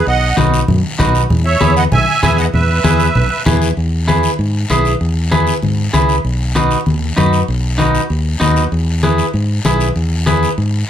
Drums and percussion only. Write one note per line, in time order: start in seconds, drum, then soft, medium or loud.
0.07 long guiro medium
0.37 high conga medium
0.37 short guiro medium
0.54 short guiro medium
0.68 high conga medium
0.68 low conga medium
0.68 long guiro medium
1.00 high conga medium
1.00 low conga medium
1.00 short guiro medium
1.15 short guiro medium
1.30 low conga medium
1.30 long guiro medium
1.61 high conga medium
1.61 short guiro medium
1.76 short guiro medium
1.92 high conga medium
1.92 low conga medium
1.92 long guiro medium
2.23 high conga medium
2.23 low conga medium
2.23 short guiro medium
2.38 short guiro medium
2.53 low conga medium
2.53 long guiro medium
2.84 high conga medium
2.84 short guiro medium
3.00 short guiro medium
3.15 low conga medium
3.15 long guiro medium
3.46 high conga medium
3.46 low conga medium
3.46 short guiro medium
3.62 short guiro medium
3.77 long guiro medium
4.08 high conga medium
4.08 short guiro medium
4.23 short guiro medium
4.39 long guiro medium
4.70 high conga medium
4.70 short guiro medium
4.85 short guiro medium
5.01 long guiro medium
5.31 high conga medium
5.31 short guiro medium
5.47 short guiro medium
5.62 high conga medium
5.62 long guiro medium
5.94 high conga medium
5.94 short guiro medium
6.09 short guiro medium
6.25 long guiro medium
6.55 high conga medium
6.55 short guiro medium
6.71 short guiro medium
6.86 high conga medium
6.86 long guiro medium
7.17 high conga medium
7.17 short guiro medium
7.33 short guiro medium
7.48 long guiro medium
7.79 high conga medium
7.79 short guiro medium
7.95 short guiro medium
8.10 long guiro medium
8.41 high conga medium
8.41 short guiro medium
8.56 short guiro medium
8.72 long guiro medium
9.03 high conga medium
9.03 short guiro medium
9.18 short guiro medium
9.34 long guiro medium
9.65 high conga medium
9.65 short guiro medium
9.80 short guiro medium
9.96 long guiro medium
10.27 high conga medium
10.27 short guiro medium
10.43 short guiro medium
10.58 long guiro medium